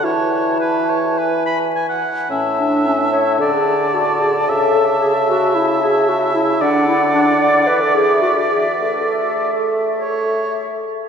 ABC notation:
X:1
M:4/4
L:1/16
Q:1/4=108
K:A
V:1 name="Flute"
a8 g6 z2 | a16- | a16 | f8 e8- |
e12- e2 z2 |]
V:2 name="Oboe"
c4 B2 c2 B2 b2 g f3 | e8 d8 | e16 | d16- |
d6 z2 c6 z2 |]
V:3 name="Clarinet"
E12 z4 | C2 D2 C2 c2 A G3 F2 G2 | A2 A2 G2 F2 E2 G2 F2 E2 | D2 E2 D2 d2 B A G2 F2 G2 |
A12 z4 |]
V:4 name="Bassoon" clef=bass
E,12- E,2 z2 | A,,8 D,8 | C,16 | D,8 E,6 z2 |
A,12- A,2 z2 |]